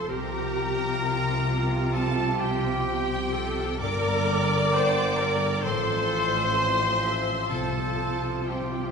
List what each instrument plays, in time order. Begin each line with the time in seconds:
Already playing: harp F3 C4 F4 A4 C5 F5 A5 C6, viola section A4, flute C6
0.09 double bass section C2, cello section C3, harp C3, french horn section F3 G4, viola section G4, oboe A#4, violin section A#4 A#5, flute A#5
0.33 harp C4
0.56 harp G4
0.80 harp F5
1.02 viola section F4, harp G5
1.25 harp C5
1.48 harp G4
1.71 harp F4
1.93 harp G3, oboe A4, violin section A4 A5, flute A5
2.17 harp C4
2.38 oboe G4, harp G4, violin section G4 G5, flute G5
2.63 harp F5
2.86 viola section G4, harp G5
3.09 harp C5
3.33 harp G4, viola section A4
3.57 harp F4
3.80 double bass section G1, harp G2, cello section G2, french horn section D3 A#4, viola section A#4, oboe D5, violin section D5 D6, flute D6
4.04 harp A#3
4.26 harp G4
4.50 harp D5
4.72 viola section C5, harp G5
4.95 harp A#4
5.17 harp G4, viola section A#4
5.40 harp D4
5.62 double bass section A1, harp A2, cello section A2, french horn section F3 C5, viola section A4, oboe C5, violin section C5 C6, flute C6
5.85 harp C4
6.31 harp F5
6.55 viola section C5
7.02 harp F4, viola section E5
7.27 harp C4
7.50 double bass section C2, harp C3, cello section C3, viola section F4, oboe A4, violin section A4 A5, flute A5
7.74 timpani C3, harp C4
7.81 timpani C3
7.90 timpani C3
7.98 timpani C3
8.06 timpani C3
8.14 timpani C3
8.22 timpani C3, harp F5
8.29 timpani C3
8.37 timpani C3
8.47 oboe G4, violin section G4 G5, flute G5, harp C6
8.53 timpani C3
8.61 timpani C3
8.67 timpani C3
8.72 timpani C3, harp C5
8.83 timpani C3